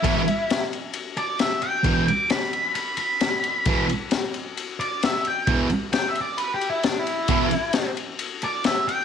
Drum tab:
RD |xxxxxxxx|xxxxxxxx|xxxxxxxx|xxxxxxxx|
SD |--o---o-|--o---o-|--o---o-|--o---o-|
BD |o-------|o-------|o-------|o-------|

RD |xxxxxxxx|
SD |--o---o-|
BD |o-------|